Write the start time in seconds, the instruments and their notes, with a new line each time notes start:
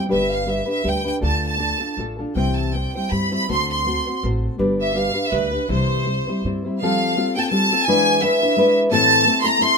0.09 upright bass G1, nylon-string guitar G3 D4 G4 B4, violin section E5
0.33 violin section F5
0.46 nylon-string guitar G3 D4 G4 B4, violin section E5
0.66 nylon-string guitar D4 G4 B4
0.70 violin section E5
0.83 upright bass D2, nylon-string guitar G3 D4 G4 B4
0.88 violin section G5
1.04 nylon-string guitar D4 G4 B4, violin section G5
1.20 upright bass D2, nylon-string guitar D3 A3 D4 F4 A4
1.25 violin section A5
1.47 violin section A5
1.58 nylon-string guitar A3 D4 F4 A4
1.80 nylon-string guitar D4 F4 A4
1.97 upright bass A1, nylon-string guitar A3 D4 F4 A4
2.19 nylon-string guitar D4 F4 A4
2.35 upright bass C2, nylon-string guitar C3 E3 G3 C4 E4 C5, violin section G5
2.57 violin section A5
2.74 nylon-string guitar G3 C4 E4 C5, violin section G5
2.95 nylon-string guitar G3 C4 E4 C5, violin section G5
3.11 upright bass G2, nylon-string guitar G3 C4 E4 C5, violin section B5
3.31 nylon-string guitar G3 C4 E4 C5, violin section B5
3.48 upright bass D2, nylon-string guitar D3 A3 C4 F#4 C5, violin section C6
3.71 violin section C6
3.86 nylon-string guitar A3 C4 F#4 C5
4.07 nylon-string guitar C4 F#4 C5
4.23 upright bass A1, nylon-string guitar A3 C4 F#4 C5
4.58 upright bass G1, nylon-string guitar G3 D4 G4 B4
4.81 violin section E5
4.94 nylon-string guitar G3 D4 G4 B4, violin section F5
5.14 nylon-string guitar D4 G4 B4
5.25 violin section E5
5.31 upright bass D2, nylon-string guitar G3 D4 G4 B4, violin section B4
5.51 nylon-string guitar D4 G4 B4
5.68 upright bass C2, nylon-string guitar C3 E3 G3 C4 E4 C5, violin section C5
6.05 nylon-string guitar G3 C4 E4 C5
6.27 nylon-string guitar G3 C4 E4 C5
6.44 upright bass G2, nylon-string guitar G3 C4 E4 C5
6.65 nylon-string guitar G3 C4 E4 C5
6.82 nylon-string guitar F3 G3 C4 F4 A4, violin section F5
7.17 nylon-string guitar G3 C4 F4 A4
7.36 nylon-string guitar C4 F4 A4, violin section G5 A5
7.44 violin section G5
7.51 nylon-string guitar G3 C4 F4 A4, violin section A5
7.72 nylon-string guitar C4 F4 A4
7.87 nylon-string guitar E3 G#3 D4 E4 B4, violin section G#5
8.22 nylon-string guitar G#3 D4 E4 B4, violin section E5
8.42 nylon-string guitar D4 E4 B4
8.57 nylon-string guitar G#3 D4 E4 B4
8.91 nylon-string guitar A2 E3 A3 C4 E4 A4, violin section A5
9.26 nylon-string guitar A3 C4 E4 A4
9.42 nylon-string guitar A3 C4 E4 A4, violin section A#5 C6
9.60 nylon-string guitar A3 C4 E4 A4, violin section C6